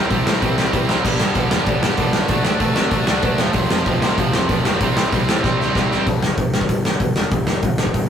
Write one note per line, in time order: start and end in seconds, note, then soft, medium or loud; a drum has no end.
0.00 0.10 G3 medium
0.00 0.11 E4 loud
0.10 0.22 C2 medium
0.10 0.27 C3 medium
0.10 0.27 G3 medium
0.10 0.25 C4 loud
0.10 0.25 E4 loud
0.10 kick loud
0.10 open hi-hat medium
0.26 0.38 A2 medium
0.26 0.40 C3 medium
0.26 0.41 G3 medium
0.26 0.41 C4 medium
0.26 0.42 E4 medium
0.26 snare loud
0.41 0.54 C2 loud
0.41 0.57 C3 loud
0.41 0.56 G3 medium
0.41 0.56 C4 medium
0.41 0.55 E4 loud
0.41 kick loud
0.41 open hi-hat medium
0.56 0.69 C2 medium
0.56 0.71 C3 medium
0.56 0.71 G3 medium
0.56 0.72 C4 medium
0.56 0.72 E4 loud
0.56 snare loud
0.72 0.85 C2 medium
0.72 0.89 C3 medium
0.72 0.88 G3 medium
0.72 0.88 C4 loud
0.72 0.87 E4 loud
0.72 kick loud
0.72 open hi-hat medium
0.88 1.01 C2 medium
0.88 1.04 C3 medium
0.88 1.04 G3 medium
0.88 1.04 C4 medium
0.88 1.03 E4 medium
0.88 snare loud
1.04 1.16 G1 medium
1.04 1.21 G2 medium
1.04 1.20 D3 loud
1.04 1.20 G3 loud
1.04 1.19 B3 medium
1.04 1.19 D4 medium
1.04 kick loud
1.04 crash loud
1.20 1.32 G1 medium
1.20 1.33 G2 medium
1.20 1.34 D3 medium
1.20 1.35 G3 medium
1.20 1.35 B3 medium
1.20 1.36 D4 medium
1.20 snare loud
1.34 1.47 G1 loud
1.34 1.52 G2 medium
1.34 1.52 D3 medium
1.34 1.51 G3 loud
1.34 1.51 B3 loud
1.34 1.50 D4 loud
1.34 kick loud
1.34 open hi-hat medium
1.51 1.64 E2 medium
1.51 1.66 G2 medium
1.51 1.66 D3 medium
1.51 1.67 G3 medium
1.51 1.68 B3 medium
1.51 1.68 D4 loud
1.51 snare loud
1.66 1.79 G1 medium
1.66 1.84 G2 medium
1.66 1.83 D3 loud
1.66 1.83 G3 medium
1.66 1.82 B3 loud
1.66 1.81 D4 loud
1.66 kick loud
1.66 open hi-hat medium
1.82 1.94 G1 medium
1.82 1.96 G2 medium
1.82 1.97 D3 medium
1.82 1.98 G3 medium
1.82 1.98 B3 medium
1.82 1.99 D4 loud
1.82 snare loud
1.97 2.10 G1 medium
1.97 2.15 G2 medium
1.97 2.14 D3 medium
1.97 2.14 G3 loud
1.97 2.13 B3 loud
1.97 2.13 D4 loud
1.97 kick loud
1.97 open hi-hat medium
2.13 2.26 C2 medium
2.13 2.30 G2 medium
2.13 2.27 D3 loud
2.13 2.29 G3 loud
2.13 2.29 B3 loud
2.13 2.29 D4 loud
2.13 snare loud
2.28 2.41 D2 loud
2.28 2.46 D3 medium
2.28 2.46 F#3 medium
2.28 2.46 A3 loud
2.28 2.44 D4 medium
2.28 kick loud
2.28 open hi-hat medium
2.45 2.57 D2 medium
2.45 2.58 D3 medium
2.45 2.59 F#3 medium
2.45 2.60 A3 medium
2.45 2.61 D4 medium
2.45 snare loud
2.59 2.72 D2 loud
2.59 2.76 D3 medium
2.59 2.75 F#3 loud
2.59 2.76 A3 loud
2.59 2.74 D4 loud
2.59 kick loud
2.59 open hi-hat medium
2.76 2.88 C3 loud
2.76 2.91 D3 medium
2.76 2.91 F#3 medium
2.76 2.91 A3 medium
2.76 2.92 D4 medium
2.76 snare loud
2.91 3.03 D2 loud
2.91 3.08 D3 medium
2.91 3.07 F#3 loud
2.91 3.07 A3 medium
2.91 3.06 D4 loud
2.91 kick loud
2.91 open hi-hat medium
3.07 3.20 D2 medium
3.07 3.22 D3 medium
3.07 3.24 F#3 medium
3.07 3.24 A3 medium
3.07 3.25 D4 medium
3.07 snare loud
3.23 3.35 D2 medium
3.23 3.39 D3 medium
3.23 3.39 F#3 loud
3.23 3.39 A3 loud
3.23 3.40 D4 loud
3.23 kick loud
3.23 open hi-hat medium
3.38 3.51 F1 medium
3.38 3.56 F2 loud
3.38 3.55 C3 loud
3.38 3.55 F3 loud
3.38 3.54 A3 loud
3.38 3.54 C4 loud
3.38 snare loud
3.53 3.66 F1 loud
3.53 3.70 F2 medium
3.53 3.70 C3 medium
3.53 3.71 F3 loud
3.53 3.71 A3 loud
3.53 3.72 C4 medium
3.53 kick loud
3.53 open hi-hat medium
3.70 3.83 F1 medium
3.70 3.86 F2 medium
3.70 3.86 C3 medium
3.70 3.85 F3 medium
3.70 3.84 A3 medium
3.70 3.85 C4 medium
3.70 snare loud
3.85 3.98 F1 medium
3.85 4.01 F2 medium
3.85 4.01 C3 medium
3.85 4.02 F3 loud
3.85 4.02 A3 loud
3.85 4.03 C4 loud
3.85 kick loud
3.85 open hi-hat medium
4.02 4.14 D2 medium
4.02 4.19 F2 medium
4.02 4.19 C3 medium
4.02 4.19 F3 loud
4.02 4.18 A3 medium
4.02 4.17 C4 loud
4.02 snare loud
4.18 4.30 F1 loud
4.18 4.33 F2 medium
4.18 4.33 C3 loud
4.18 4.34 F3 medium
4.18 4.35 A3 medium
4.18 4.35 C4 loud
4.18 kick loud
4.18 open hi-hat medium
4.33 4.45 F1 medium
4.33 4.50 F2 medium
4.33 4.49 C3 medium
4.33 4.49 F3 loud
4.33 4.48 A3 loud
4.33 4.47 C4 loud
4.33 snare loud
4.49 4.60 F1 medium
4.49 4.63 F2 medium
4.49 4.65 C3 medium
4.49 4.65 F3 medium
4.49 4.65 A3 medium
4.49 4.66 C4 loud
4.49 kick loud
4.49 open hi-hat medium
4.65 4.78 F1 medium
4.65 4.80 F2 medium
4.65 4.80 C3 medium
4.65 4.80 F3 loud
4.65 4.81 A3 loud
4.65 4.81 C4 loud
4.65 snare loud
4.81 4.92 C2 medium
4.81 4.97 C3 medium
4.81 4.97 G3 medium
4.81 4.97 C4 medium
4.81 4.96 E4 loud
4.81 kick loud
4.81 open hi-hat medium
4.97 5.09 C2 medium
4.97 5.10 C3 medium
4.97 5.12 G3 medium
4.97 5.12 C4 medium
4.97 5.13 E4 medium
4.97 snare loud
5.12 5.24 C2 medium
5.12 5.28 C3 loud
5.12 5.28 G3 loud
5.12 5.27 C4 loud
5.12 5.26 E4 loud
5.12 kick loud
5.12 open hi-hat medium
5.27 5.40 A2 loud
5.27 5.41 C3 medium
5.27 5.42 G3 medium
5.27 5.43 C4 medium
5.27 5.43 E4 medium
5.27 snare loud
5.42 5.55 C2 medium
5.42 5.60 C3 medium
5.42 5.59 G3 medium
5.42 5.59 C4 loud
5.42 5.58 E4 loud
5.42 kick loud
5.42 snare medium
5.60 5.72 C2 medium
5.60 5.74 C3 medium
5.60 5.75 G3 medium
5.60 5.75 C4 medium
5.60 5.76 E4 medium
5.60 snare medium
5.75 5.86 C2 medium
5.75 5.92 C3 loud
5.75 5.91 G3 medium
5.75 5.90 C4 medium
5.75 5.90 E4 loud
5.75 kick loud
5.75 snare medium
5.91 6.04 C2 medium
5.91 6.06 C3 medium
5.91 6.06 G3 medium
5.91 6.06 C4 loud
5.91 6.06 E4 loud
5.91 snare medium
6.06 6.22 G1 medium
6.06 6.21 G2 medium
6.06 6.21 D3 medium
6.06 6.21 G3 medium
6.06 kick loud
6.06 open hi-hat medium
6.22 6.37 G1 medium
6.22 6.36 G2 medium
6.22 6.36 D3 medium
6.22 snare loud
6.37 6.53 G1 medium
6.37 6.52 G2 medium
6.37 6.52 D3 medium
6.37 kick loud
6.37 open hi-hat medium
6.54 6.69 G1 medium
6.54 6.68 G2 medium
6.54 6.68 D3 medium
6.54 snare loud
6.61 kick loud
6.69 6.84 G1 loud
6.69 6.83 G2 medium
6.69 6.83 D3 medium
6.69 kick medium
6.69 open hi-hat medium
6.85 6.99 G1 medium
6.85 7.00 G2 medium
6.85 7.00 D3 medium
6.85 snare loud
7.00 7.15 G1 medium
7.00 7.15 G2 medium
7.00 7.15 D3 medium
7.00 kick loud
7.00 open hi-hat medium
7.16 7.31 E1 medium
7.16 7.31 G2 medium
7.16 7.31 D3 medium
7.16 snare loud
7.31 7.47 G1 medium
7.31 7.47 G2 medium
7.31 7.47 D3 medium
7.31 kick loud
7.31 open hi-hat medium
7.47 7.62 G1 medium
7.47 7.62 G2 medium
7.47 7.62 D3 medium
7.47 snare loud
7.63 7.78 G1 medium
7.63 7.78 G2 medium
7.63 7.78 D3 medium
7.63 kick loud
7.63 open hi-hat medium
7.78 7.94 G1 loud
7.78 7.93 G2 medium
7.78 7.93 D3 medium
7.78 snare loud
7.87 kick medium
7.94 8.09 G1 medium
7.94 8.09 G2 medium
7.94 8.09 D3 medium
7.94 kick loud
7.94 open hi-hat medium